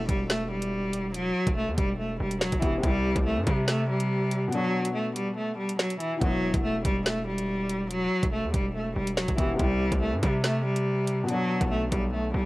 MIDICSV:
0, 0, Header, 1, 6, 480
1, 0, Start_track
1, 0, Key_signature, 1, "minor"
1, 0, Tempo, 422535
1, 1300, Time_signature, 4, 2, 24, 8
1, 14149, End_track
2, 0, Start_track
2, 0, Title_t, "Felt piano"
2, 0, Program_c, 0, 0
2, 0, Control_c, 0, 64, 127
2, 0, Note_on_c, 0, 52, 71
2, 0, Note_on_c, 0, 59, 60
2, 0, Note_on_c, 0, 64, 70
2, 0, Note_on_c, 0, 66, 62
2, 2908, Note_off_c, 0, 52, 0
2, 2926, Note_off_c, 0, 59, 0
2, 2944, Note_off_c, 0, 66, 0
2, 2949, Note_on_c, 0, 52, 54
2, 2962, Note_off_c, 0, 64, 0
2, 2967, Note_on_c, 0, 59, 49
2, 2985, Note_on_c, 0, 66, 48
2, 3003, Note_on_c, 0, 67, 57
2, 3160, Note_on_c, 0, 48, 71
2, 3196, Note_on_c, 0, 60, 63
2, 3204, Note_off_c, 0, 52, 0
2, 3213, Note_off_c, 0, 59, 0
2, 3222, Note_off_c, 0, 66, 0
2, 3231, Note_off_c, 0, 67, 0
2, 3232, Note_on_c, 0, 64, 62
2, 3234, Control_c, 0, 64, 0
2, 3267, Note_on_c, 0, 67, 75
2, 3411, Control_c, 0, 64, 127
2, 5071, Note_off_c, 0, 48, 0
2, 5087, Note_on_c, 0, 47, 66
2, 5089, Note_off_c, 0, 60, 0
2, 5107, Note_off_c, 0, 64, 0
2, 5123, Note_on_c, 0, 59, 58
2, 5126, Note_off_c, 0, 67, 0
2, 5156, Control_c, 0, 64, 0
2, 5159, Note_on_c, 0, 62, 66
2, 5195, Note_on_c, 0, 66, 70
2, 5360, Control_c, 0, 64, 127
2, 6994, Note_off_c, 0, 47, 0
2, 7006, Note_on_c, 0, 52, 69
2, 7013, Note_off_c, 0, 59, 0
2, 7031, Note_off_c, 0, 62, 0
2, 7042, Note_on_c, 0, 59, 59
2, 7049, Note_off_c, 0, 66, 0
2, 7076, Control_c, 0, 64, 0
2, 7078, Note_on_c, 0, 66, 63
2, 7114, Note_on_c, 0, 64, 73
2, 7289, Control_c, 0, 64, 127
2, 10588, Note_off_c, 0, 52, 0
2, 10605, Note_off_c, 0, 59, 0
2, 10623, Note_off_c, 0, 66, 0
2, 10628, Note_on_c, 0, 52, 53
2, 10641, Note_off_c, 0, 64, 0
2, 10647, Note_on_c, 0, 59, 52
2, 10665, Note_on_c, 0, 66, 48
2, 10682, Note_on_c, 0, 67, 58
2, 10840, Note_on_c, 0, 48, 70
2, 10876, Note_on_c, 0, 60, 62
2, 10884, Note_off_c, 0, 52, 0
2, 10893, Note_off_c, 0, 59, 0
2, 10902, Note_off_c, 0, 66, 0
2, 10911, Note_off_c, 0, 67, 0
2, 10912, Note_on_c, 0, 64, 61
2, 10913, Control_c, 0, 64, 0
2, 10947, Note_on_c, 0, 67, 77
2, 11088, Control_c, 0, 64, 127
2, 12751, Note_off_c, 0, 48, 0
2, 12766, Note_on_c, 0, 47, 68
2, 12769, Note_off_c, 0, 60, 0
2, 12787, Note_off_c, 0, 64, 0
2, 12802, Note_on_c, 0, 59, 57
2, 12806, Note_off_c, 0, 67, 0
2, 12836, Control_c, 0, 64, 0
2, 12838, Note_on_c, 0, 62, 63
2, 12874, Note_on_c, 0, 66, 73
2, 13037, Control_c, 0, 64, 127
2, 14149, Note_off_c, 0, 47, 0
2, 14149, Note_off_c, 0, 59, 0
2, 14149, Note_off_c, 0, 62, 0
2, 14149, Note_off_c, 0, 66, 0
2, 14149, End_track
3, 0, Start_track
3, 0, Title_t, "Cello"
3, 0, Program_c, 1, 42
3, 97, Note_on_c, 1, 55, 85
3, 301, Note_off_c, 1, 55, 0
3, 341, Note_on_c, 1, 57, 81
3, 543, Note_off_c, 1, 57, 0
3, 578, Note_on_c, 1, 55, 79
3, 1256, Note_off_c, 1, 55, 0
3, 1299, Note_on_c, 1, 54, 108
3, 1750, Note_off_c, 1, 54, 0
3, 1779, Note_on_c, 1, 57, 92
3, 1982, Note_off_c, 1, 57, 0
3, 2019, Note_on_c, 1, 55, 87
3, 2222, Note_off_c, 1, 55, 0
3, 2259, Note_on_c, 1, 57, 73
3, 2462, Note_off_c, 1, 57, 0
3, 2500, Note_on_c, 1, 55, 78
3, 2703, Note_off_c, 1, 55, 0
3, 2740, Note_on_c, 1, 54, 90
3, 2943, Note_off_c, 1, 54, 0
3, 2979, Note_on_c, 1, 52, 78
3, 3182, Note_off_c, 1, 52, 0
3, 3219, Note_on_c, 1, 55, 106
3, 3670, Note_off_c, 1, 55, 0
3, 3703, Note_on_c, 1, 57, 85
3, 3905, Note_off_c, 1, 57, 0
3, 3937, Note_on_c, 1, 55, 82
3, 4141, Note_off_c, 1, 55, 0
3, 4184, Note_on_c, 1, 57, 88
3, 4385, Note_off_c, 1, 57, 0
3, 4423, Note_on_c, 1, 55, 81
3, 5098, Note_off_c, 1, 55, 0
3, 5142, Note_on_c, 1, 54, 114
3, 5592, Note_off_c, 1, 54, 0
3, 5619, Note_on_c, 1, 57, 86
3, 5822, Note_off_c, 1, 57, 0
3, 5861, Note_on_c, 1, 55, 77
3, 6063, Note_off_c, 1, 55, 0
3, 6103, Note_on_c, 1, 57, 74
3, 6305, Note_off_c, 1, 57, 0
3, 6337, Note_on_c, 1, 55, 76
3, 6541, Note_off_c, 1, 55, 0
3, 6581, Note_on_c, 1, 54, 83
3, 6784, Note_off_c, 1, 54, 0
3, 6820, Note_on_c, 1, 52, 82
3, 7023, Note_off_c, 1, 52, 0
3, 7060, Note_on_c, 1, 54, 102
3, 7511, Note_off_c, 1, 54, 0
3, 7536, Note_on_c, 1, 57, 89
3, 7741, Note_off_c, 1, 57, 0
3, 7778, Note_on_c, 1, 55, 88
3, 7982, Note_off_c, 1, 55, 0
3, 8022, Note_on_c, 1, 57, 83
3, 8224, Note_off_c, 1, 57, 0
3, 8259, Note_on_c, 1, 55, 78
3, 8936, Note_off_c, 1, 55, 0
3, 8978, Note_on_c, 1, 54, 110
3, 9430, Note_off_c, 1, 54, 0
3, 9457, Note_on_c, 1, 57, 89
3, 9661, Note_off_c, 1, 57, 0
3, 9699, Note_on_c, 1, 55, 85
3, 9902, Note_off_c, 1, 55, 0
3, 9939, Note_on_c, 1, 57, 72
3, 10143, Note_off_c, 1, 57, 0
3, 10181, Note_on_c, 1, 55, 79
3, 10383, Note_off_c, 1, 55, 0
3, 10420, Note_on_c, 1, 54, 89
3, 10623, Note_off_c, 1, 54, 0
3, 10659, Note_on_c, 1, 52, 78
3, 10862, Note_off_c, 1, 52, 0
3, 10898, Note_on_c, 1, 55, 107
3, 11350, Note_off_c, 1, 55, 0
3, 11382, Note_on_c, 1, 57, 91
3, 11584, Note_off_c, 1, 57, 0
3, 11616, Note_on_c, 1, 55, 81
3, 11821, Note_off_c, 1, 55, 0
3, 11862, Note_on_c, 1, 57, 89
3, 12064, Note_off_c, 1, 57, 0
3, 12101, Note_on_c, 1, 55, 80
3, 12777, Note_off_c, 1, 55, 0
3, 12820, Note_on_c, 1, 54, 110
3, 13271, Note_off_c, 1, 54, 0
3, 13299, Note_on_c, 1, 57, 85
3, 13502, Note_off_c, 1, 57, 0
3, 13540, Note_on_c, 1, 55, 79
3, 13743, Note_off_c, 1, 55, 0
3, 13783, Note_on_c, 1, 57, 71
3, 13985, Note_off_c, 1, 57, 0
3, 14018, Note_on_c, 1, 55, 74
3, 14149, Note_off_c, 1, 55, 0
3, 14149, End_track
4, 0, Start_track
4, 0, Title_t, "808-style bass"
4, 0, Program_c, 2, 38
4, 100, Note_on_c, 2, 28, 102
4, 1494, Note_off_c, 2, 28, 0
4, 1667, Note_on_c, 2, 28, 104
4, 1907, Note_on_c, 2, 40, 97
4, 1924, Note_off_c, 2, 28, 0
4, 2014, Note_off_c, 2, 40, 0
4, 2020, Note_on_c, 2, 28, 101
4, 2481, Note_off_c, 2, 28, 0
4, 2500, Note_on_c, 2, 28, 104
4, 2852, Note_off_c, 2, 28, 0
4, 2867, Note_on_c, 2, 28, 102
4, 2975, Note_off_c, 2, 28, 0
4, 2980, Note_on_c, 2, 28, 110
4, 3210, Note_off_c, 2, 28, 0
4, 3219, Note_on_c, 2, 36, 115
4, 3572, Note_off_c, 2, 36, 0
4, 3587, Note_on_c, 2, 36, 100
4, 3827, Note_on_c, 2, 43, 95
4, 3844, Note_off_c, 2, 36, 0
4, 3934, Note_off_c, 2, 43, 0
4, 3940, Note_on_c, 2, 48, 100
4, 5094, Note_off_c, 2, 48, 0
4, 7060, Note_on_c, 2, 28, 113
4, 7412, Note_off_c, 2, 28, 0
4, 7428, Note_on_c, 2, 28, 101
4, 7766, Note_off_c, 2, 28, 0
4, 7780, Note_on_c, 2, 28, 101
4, 9175, Note_off_c, 2, 28, 0
4, 9348, Note_on_c, 2, 28, 105
4, 9587, Note_on_c, 2, 40, 98
4, 9604, Note_off_c, 2, 28, 0
4, 9694, Note_off_c, 2, 40, 0
4, 9700, Note_on_c, 2, 28, 103
4, 10161, Note_off_c, 2, 28, 0
4, 10179, Note_on_c, 2, 28, 103
4, 10532, Note_off_c, 2, 28, 0
4, 10547, Note_on_c, 2, 28, 103
4, 10655, Note_off_c, 2, 28, 0
4, 10660, Note_on_c, 2, 28, 110
4, 10890, Note_off_c, 2, 28, 0
4, 10899, Note_on_c, 2, 36, 116
4, 11252, Note_off_c, 2, 36, 0
4, 11267, Note_on_c, 2, 36, 105
4, 11507, Note_on_c, 2, 43, 96
4, 11524, Note_off_c, 2, 36, 0
4, 11614, Note_off_c, 2, 43, 0
4, 11620, Note_on_c, 2, 48, 104
4, 12774, Note_off_c, 2, 48, 0
4, 13188, Note_on_c, 2, 35, 98
4, 13526, Note_off_c, 2, 35, 0
4, 13540, Note_on_c, 2, 35, 100
4, 14001, Note_off_c, 2, 35, 0
4, 14019, Note_on_c, 2, 35, 103
4, 14149, Note_off_c, 2, 35, 0
4, 14149, End_track
5, 0, Start_track
5, 0, Title_t, "Swell"
5, 0, Program_c, 3, 103
5, 12820, Note_on_c, 3, 60, 82
5, 14149, Note_off_c, 3, 60, 0
5, 14149, End_track
6, 0, Start_track
6, 0, Title_t, "Drums"
6, 100, Note_on_c, 9, 36, 93
6, 100, Note_on_c, 9, 42, 84
6, 213, Note_off_c, 9, 36, 0
6, 214, Note_off_c, 9, 42, 0
6, 339, Note_on_c, 9, 38, 121
6, 343, Note_on_c, 9, 42, 71
6, 453, Note_off_c, 9, 38, 0
6, 457, Note_off_c, 9, 42, 0
6, 705, Note_on_c, 9, 42, 84
6, 818, Note_off_c, 9, 42, 0
6, 1060, Note_on_c, 9, 42, 77
6, 1173, Note_off_c, 9, 42, 0
6, 1300, Note_on_c, 9, 42, 69
6, 1414, Note_off_c, 9, 42, 0
6, 1667, Note_on_c, 9, 36, 101
6, 1669, Note_on_c, 9, 42, 76
6, 1781, Note_off_c, 9, 36, 0
6, 1782, Note_off_c, 9, 42, 0
6, 2020, Note_on_c, 9, 36, 94
6, 2020, Note_on_c, 9, 42, 86
6, 2133, Note_off_c, 9, 36, 0
6, 2133, Note_off_c, 9, 42, 0
6, 2625, Note_on_c, 9, 42, 74
6, 2739, Note_off_c, 9, 42, 0
6, 2739, Note_on_c, 9, 38, 122
6, 2853, Note_off_c, 9, 38, 0
6, 2865, Note_on_c, 9, 42, 79
6, 2867, Note_on_c, 9, 36, 87
6, 2979, Note_off_c, 9, 42, 0
6, 2979, Note_on_c, 9, 42, 81
6, 2980, Note_off_c, 9, 36, 0
6, 2980, Note_on_c, 9, 36, 109
6, 3093, Note_off_c, 9, 36, 0
6, 3093, Note_off_c, 9, 42, 0
6, 3219, Note_on_c, 9, 36, 116
6, 3220, Note_on_c, 9, 42, 68
6, 3333, Note_off_c, 9, 36, 0
6, 3333, Note_off_c, 9, 42, 0
6, 3587, Note_on_c, 9, 36, 101
6, 3588, Note_on_c, 9, 42, 78
6, 3701, Note_off_c, 9, 36, 0
6, 3702, Note_off_c, 9, 42, 0
6, 3940, Note_on_c, 9, 36, 94
6, 3940, Note_on_c, 9, 42, 84
6, 4053, Note_off_c, 9, 36, 0
6, 4053, Note_off_c, 9, 42, 0
6, 4179, Note_on_c, 9, 38, 118
6, 4183, Note_on_c, 9, 42, 71
6, 4293, Note_off_c, 9, 38, 0
6, 4296, Note_off_c, 9, 42, 0
6, 4545, Note_on_c, 9, 42, 84
6, 4658, Note_off_c, 9, 42, 0
6, 4900, Note_on_c, 9, 42, 78
6, 5014, Note_off_c, 9, 42, 0
6, 5140, Note_on_c, 9, 42, 70
6, 5254, Note_off_c, 9, 42, 0
6, 5509, Note_on_c, 9, 42, 76
6, 5622, Note_off_c, 9, 42, 0
6, 5860, Note_on_c, 9, 42, 84
6, 5974, Note_off_c, 9, 42, 0
6, 6465, Note_on_c, 9, 42, 75
6, 6579, Note_off_c, 9, 42, 0
6, 6580, Note_on_c, 9, 38, 125
6, 6693, Note_off_c, 9, 38, 0
6, 6706, Note_on_c, 9, 42, 79
6, 6819, Note_off_c, 9, 42, 0
6, 6820, Note_on_c, 9, 42, 76
6, 6934, Note_off_c, 9, 42, 0
6, 7060, Note_on_c, 9, 36, 119
6, 7060, Note_on_c, 9, 42, 69
6, 7173, Note_off_c, 9, 36, 0
6, 7174, Note_off_c, 9, 42, 0
6, 7428, Note_on_c, 9, 36, 102
6, 7429, Note_on_c, 9, 42, 74
6, 7541, Note_off_c, 9, 36, 0
6, 7543, Note_off_c, 9, 42, 0
6, 7780, Note_on_c, 9, 36, 91
6, 7780, Note_on_c, 9, 42, 86
6, 7894, Note_off_c, 9, 36, 0
6, 7894, Note_off_c, 9, 42, 0
6, 8020, Note_on_c, 9, 38, 121
6, 8023, Note_on_c, 9, 42, 70
6, 8133, Note_off_c, 9, 38, 0
6, 8137, Note_off_c, 9, 42, 0
6, 8385, Note_on_c, 9, 42, 82
6, 8499, Note_off_c, 9, 42, 0
6, 8740, Note_on_c, 9, 42, 75
6, 8854, Note_off_c, 9, 42, 0
6, 8980, Note_on_c, 9, 42, 69
6, 9094, Note_off_c, 9, 42, 0
6, 9348, Note_on_c, 9, 36, 98
6, 9349, Note_on_c, 9, 42, 77
6, 9461, Note_off_c, 9, 36, 0
6, 9463, Note_off_c, 9, 42, 0
6, 9700, Note_on_c, 9, 36, 91
6, 9700, Note_on_c, 9, 42, 84
6, 9813, Note_off_c, 9, 36, 0
6, 9813, Note_off_c, 9, 42, 0
6, 10305, Note_on_c, 9, 42, 76
6, 10419, Note_off_c, 9, 42, 0
6, 10419, Note_on_c, 9, 38, 124
6, 10533, Note_off_c, 9, 38, 0
6, 10545, Note_on_c, 9, 42, 78
6, 10547, Note_on_c, 9, 36, 86
6, 10659, Note_off_c, 9, 42, 0
6, 10659, Note_on_c, 9, 42, 80
6, 10660, Note_off_c, 9, 36, 0
6, 10660, Note_on_c, 9, 36, 107
6, 10773, Note_off_c, 9, 36, 0
6, 10773, Note_off_c, 9, 42, 0
6, 10899, Note_on_c, 9, 36, 119
6, 10900, Note_on_c, 9, 42, 69
6, 11013, Note_off_c, 9, 36, 0
6, 11013, Note_off_c, 9, 42, 0
6, 11267, Note_on_c, 9, 36, 103
6, 11268, Note_on_c, 9, 42, 75
6, 11381, Note_off_c, 9, 36, 0
6, 11382, Note_off_c, 9, 42, 0
6, 11620, Note_on_c, 9, 36, 90
6, 11620, Note_on_c, 9, 42, 87
6, 11734, Note_off_c, 9, 36, 0
6, 11734, Note_off_c, 9, 42, 0
6, 11859, Note_on_c, 9, 38, 121
6, 11863, Note_on_c, 9, 42, 70
6, 11973, Note_off_c, 9, 38, 0
6, 11977, Note_off_c, 9, 42, 0
6, 12225, Note_on_c, 9, 42, 83
6, 12339, Note_off_c, 9, 42, 0
6, 12580, Note_on_c, 9, 42, 80
6, 12694, Note_off_c, 9, 42, 0
6, 12820, Note_on_c, 9, 42, 71
6, 12933, Note_off_c, 9, 42, 0
6, 13188, Note_on_c, 9, 36, 101
6, 13189, Note_on_c, 9, 42, 77
6, 13301, Note_off_c, 9, 36, 0
6, 13302, Note_off_c, 9, 42, 0
6, 13540, Note_on_c, 9, 36, 91
6, 13540, Note_on_c, 9, 42, 84
6, 13654, Note_off_c, 9, 36, 0
6, 13654, Note_off_c, 9, 42, 0
6, 14149, End_track
0, 0, End_of_file